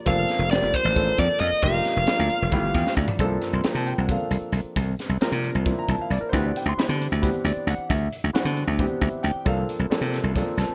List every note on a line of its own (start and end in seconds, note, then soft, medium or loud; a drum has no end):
0.06 0.24 F1 loud
0.06 0.45 F3 medium
0.06 0.45 A#3 medium
0.06 0.45 C4 medium
0.06 0.45 D4 medium
0.06 0.46 A4 medium
0.06 0.51 F5 medium
0.06 kick loud
0.06 closed hi-hat medium
0.29 snare soft
0.29 closed hi-hat medium
0.39 0.57 F1 medium
0.50 0.90 F3 medium
0.50 0.90 A#3 medium
0.50 0.90 C4 medium
0.50 0.90 D4 medium
0.50 0.90 G4 medium
0.50 0.74 D5 medium
0.50 snare loud
0.50 closed hi-hat medium
0.62 0.71 F1 medium
0.74 1.20 C5 medium
0.74 kick medium
0.74 closed hi-hat medium
0.85 1.11 A1 medium
0.95 1.61 F3 medium
0.95 1.61 A#3 medium
0.95 1.63 C4 medium
0.95 1.61 D4 medium
0.95 1.63 A4 medium
0.95 kick loud
0.95 closed hi-hat medium
1.18 1.27 F2 loud
1.18 1.40 D5 medium
1.18 kick medium
1.18 closed hi-hat medium
1.40 1.49 F2 medium
1.40 1.61 D#5 medium
1.40 closed hi-hat medium
1.53 muted slap bass stroke soft
1.62 1.80 F1 medium
1.62 2.02 F3 medium
1.62 2.02 A#3 medium
1.62 2.02 D4 medium
1.62 2.02 D#4 medium
1.62 2.03 G4 medium
1.62 2.94 F5 medium
1.62 kick loud
1.62 closed hi-hat medium
1.85 snare soft
1.85 closed hi-hat medium
1.96 2.05 F1 medium
2.07 2.46 F3 medium
2.07 2.46 A#3 medium
2.07 2.46 D4 medium
2.07 2.47 D#4 medium
2.07 2.47 F4 medium
2.07 snare loud
2.07 closed hi-hat medium
2.19 2.28 D2 medium
2.30 muted slap bass stroke soft
2.30 closed hi-hat medium
2.42 2.51 F1 medium
2.51 2.70 G1 loud
2.51 3.20 E3 medium
2.51 3.19 F3 medium
2.51 3.19 A3 medium
2.51 3.20 B3 medium
2.51 3.20 G4 medium
2.51 kick loud
2.51 closed hi-hat medium
2.74 2.83 E2 medium
2.74 2.96 G5 medium
2.74 kick medium
2.74 snare soft
2.74 closed hi-hat medium
2.87 snare medium
2.97 3.06 D2 medium
2.97 3.19 D5 medium
2.97 kick medium
3.08 muted slap bass stroke soft
3.08 floor tom loud
3.19 3.37 C2 medium
3.19 3.59 F3 medium
3.19 3.59 A#3 medium
3.19 3.59 C4 medium
3.19 3.59 D4 medium
3.19 3.59 A4 medium
3.19 kick loud
3.19 closed hi-hat medium
3.42 snare soft
3.42 closed hi-hat medium
3.53 3.62 C2 medium
3.53 3.65 C6 medium
3.64 4.04 F3 medium
3.64 4.04 A#3 medium
3.64 4.04 C4 medium
3.64 4.04 D4 medium
3.64 4.04 F4 medium
3.64 3.77 A#5 medium
3.64 muted slap bass stroke soft
3.64 snare medium
3.64 closed hi-hat medium
3.75 3.93 C3 medium
3.75 3.87 A5 medium
3.87 3.98 G5 medium
3.87 closed hi-hat medium
3.98 4.15 C2 medium
3.98 4.10 F#5 medium
4.09 4.87 F3 medium
4.09 4.87 A#3 medium
4.09 4.88 C4 soft
4.09 4.87 D4 soft
4.09 4.88 A4 medium
4.09 4.52 F5 medium
4.09 kick medium
4.09 closed hi-hat medium
4.31 4.40 C2 medium
4.31 closed hi-hat medium
4.41 muted slap bass stroke soft
4.52 4.62 C2 medium
4.52 closed hi-hat medium
4.76 4.94 C2 medium
4.76 kick loud
4.76 closed hi-hat medium
4.99 snare soft
4.99 closed hi-hat medium
5.09 5.18 C2 medium
5.21 5.60 F3 medium
5.21 5.60 A#3 medium
5.21 5.60 C4 medium
5.21 5.61 D4 medium
5.21 5.61 A#4 medium
5.21 snare loud
5.21 closed hi-hat medium
5.32 5.50 C3 medium
5.44 closed hi-hat medium
5.55 5.72 C2 medium
5.66 6.33 F3 medium
5.66 6.33 A#3 medium
5.66 6.31 C4 medium
5.66 6.31 D4 medium
5.66 6.33 E4 medium
5.66 kick loud
5.66 closed hi-hat medium
5.79 5.89 A#5 medium
5.89 5.97 C2 medium
5.89 6.00 A5 medium
5.89 kick medium
5.89 closed hi-hat medium
5.99 6.11 F5 medium
5.99 muted slap bass stroke soft
6.10 6.19 C2 medium
6.10 6.18 D5 medium
6.10 closed hi-hat medium
6.21 6.27 A#4 medium
6.29 6.72 E3 medium
6.29 6.72 B3 medium
6.29 6.72 C4 medium
6.29 6.72 D4 medium
6.29 6.72 G4 medium
6.29 6.35 C5 medium
6.33 6.51 D2 medium
6.33 6.46 B4 medium
6.33 kick loud
6.33 closed hi-hat medium
6.46 6.56 D5 medium
6.56 6.67 G5 medium
6.56 closed hi-hat medium
6.66 6.75 D2 medium
6.66 6.79 C6 loud
6.77 7.17 E3 medium
6.77 7.17 B3 medium
6.77 7.17 C4 medium
6.77 7.17 D4 medium
6.77 7.17 G4 medium
6.77 6.92 B5 medium
6.77 muted slap bass stroke soft
6.77 snare loud
6.77 closed hi-hat medium
6.89 7.06 D3 medium
7.02 closed hi-hat medium
7.12 7.29 D2 medium
7.22 8.00 E3 medium
7.22 8.00 B3 medium
7.22 8.00 C4 medium
7.22 8.00 D4 medium
7.22 8.01 G4 medium
7.22 kick loud
7.22 closed hi-hat medium
7.44 7.53 D2 medium
7.44 7.67 D5 medium
7.44 closed hi-hat medium
7.67 7.76 D2 medium
7.67 7.91 F#5 medium
7.67 closed hi-hat medium
7.78 muted slap bass stroke soft
7.89 8.07 D2 medium
7.89 8.11 E5 medium
7.89 kick loud
7.89 closed hi-hat medium
8.13 closed hi-hat medium
8.24 8.32 D2 medium
8.33 8.73 E3 medium
8.33 8.73 B3 medium
8.33 8.73 C4 medium
8.33 8.73 D4 medium
8.33 8.73 F#4 medium
8.33 muted slap bass stroke soft
8.33 snare loud
8.33 closed hi-hat medium
8.45 8.63 D3 medium
8.57 closed hi-hat medium
8.67 8.85 D2 medium
8.79 9.46 E3 medium
8.79 9.46 B3 medium
8.79 9.44 C4 medium
8.79 9.44 D4 medium
8.79 9.47 G4 medium
8.79 kick loud
8.79 closed hi-hat medium
9.01 9.10 D2 medium
9.01 9.24 E5 medium
9.01 kick medium
9.01 closed hi-hat medium
9.13 muted slap bass stroke soft
9.23 9.33 D2 medium
9.23 9.45 G5 medium
9.23 closed hi-hat medium
9.45 9.63 C2 medium
9.45 9.85 F3 medium
9.45 9.85 A#3 medium
9.45 9.85 C4 medium
9.45 9.85 D4 medium
9.45 9.85 A4 medium
9.45 9.69 F5 medium
9.45 kick loud
9.45 closed hi-hat medium
9.69 closed hi-hat medium
9.79 9.88 C2 medium
9.90 10.30 F3 medium
9.90 10.30 A#3 medium
9.90 10.30 C4 medium
9.90 10.30 D4 medium
9.90 10.30 A4 medium
9.90 muted slap bass stroke soft
9.90 snare loud
9.90 closed hi-hat medium
10.01 10.19 C3 medium
10.14 snare soft
10.14 closed hi-hat medium
10.24 10.41 C2 medium
10.36 10.75 F3 medium
10.36 10.75 A#3 medium
10.36 10.75 C4 medium
10.36 10.75 D4 medium
10.36 10.75 A4 medium
10.36 kick medium
10.36 snare soft
10.36 closed hi-hat medium
10.57 10.66 C2 medium
10.57 10.75 A5 medium
10.57 snare soft
10.57 closed hi-hat medium
10.69 muted slap bass stroke soft